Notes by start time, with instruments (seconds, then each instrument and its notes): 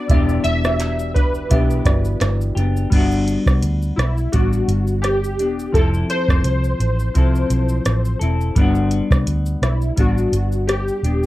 Already playing: clean electric guitar D4 F#4, synth keys D5
0.08 fingered electric bass E1, clean electric guitar E3 B3, kalimba G4 E5, kick, closed hi-hat, shaker
0.13 clean electric guitar D4 G4
0.29 shaker
0.44 fingered electric bass E1, synth keys E5, closed hi-hat, shaker
0.64 kalimba F#4 D5, cross-stick, shaker
0.80 clap, closed hi-hat, shaker
0.99 shaker
1.14 kalimba D4 B4, synth keys B4, kick, closed hi-hat, shaker
1.35 shaker
1.49 fingered electric bass B1, clean electric guitar E3 B3 D4, kalimba G4 E5, kick, closed hi-hat, shaker
1.54 clean electric guitar G4
1.71 shaker
1.85 fingered electric bass G1, kalimba F#4 D5, kick, cross-stick, closed hi-hat, shaker
2.05 shaker
2.20 fingered electric bass G1, kalimba D4 B4, cross-stick, clap, closed hi-hat, shaker
2.41 shaker
2.55 fingered electric bass F#1, clean electric guitar D4 G4, closed hi-hat, shaker
2.59 clean electric guitar B3
2.77 shaker
2.90 fingered electric bass G1, clean electric guitar G3 B3, kick, closed hi-hat, crash, shaker
2.94 clean electric guitar D4 F#4
3.12 shaker
3.28 closed hi-hat, shaker
3.46 fingered electric bass C2, kick, cross-stick, shaker
3.62 fingered electric bass D2, closed hi-hat, shaker
3.82 shaker
3.96 fingered electric bass B1, synth keys E4, cross-stick, closed hi-hat, shaker
4.17 shaker
4.32 fingered electric bass A1, clean electric guitar G3 B3 D4, synth keys F#4, kick, closed hi-hat, shaker
4.53 shaker
4.68 fingered electric bass G1, closed hi-hat, shaker
4.88 shaker
5.02 synth keys G4, cross-stick, closed hi-hat, shaker
5.24 shaker
5.38 fingered electric bass E1, clean electric guitar B3 D4, closed hi-hat, shaker
5.60 shaker
5.72 fingered electric bass F1, clean electric guitar F3 C4, synth keys A4, kick, closed hi-hat, shaker
5.77 clean electric guitar E4 A4
5.94 shaker
6.10 synth keys C5, closed hi-hat, shaker
6.28 fingered electric bass F1, kick, cross-stick, shaker
6.44 fingered electric bass C2, closed hi-hat, shaker
6.64 shaker
6.80 fingered electric bass A1, closed hi-hat, shaker
7.00 shaker
7.14 fingered electric bass C2, clean electric guitar F3 C4 E4 A4, kick, closed hi-hat, shaker
7.35 shaker
7.50 fingered electric bass B1, closed hi-hat, shaker
7.69 shaker
7.85 fingered electric bass A1, cross-stick, closed hi-hat, shaker
8.05 shaker
8.19 fingered electric bass E1, clean electric guitar E4 A4, closed hi-hat, shaker
8.23 clean electric guitar C4
8.41 shaker
8.55 fingered electric bass G1, clean electric guitar G3 B3 D4, kick, closed hi-hat, shaker
8.61 clean electric guitar F#4
8.75 shaker
8.91 closed hi-hat, shaker
9.11 fingered electric bass C2, kick, cross-stick, shaker
9.26 fingered electric bass D2, closed hi-hat, shaker
9.46 shaker
9.62 fingered electric bass B1, synth keys E4, cross-stick, closed hi-hat, shaker
9.82 shaker
9.96 fingered electric bass A1, clean electric guitar G3 B3 D4, synth keys F#4, kick, closed hi-hat, shaker
10.18 shaker
10.32 fingered electric bass G1, closed hi-hat, shaker
10.52 shaker
10.67 synth keys G4, cross-stick, closed hi-hat, shaker
10.88 shaker
11.03 fingered electric bass D#1, clean electric guitar B3 D4, closed hi-hat, shaker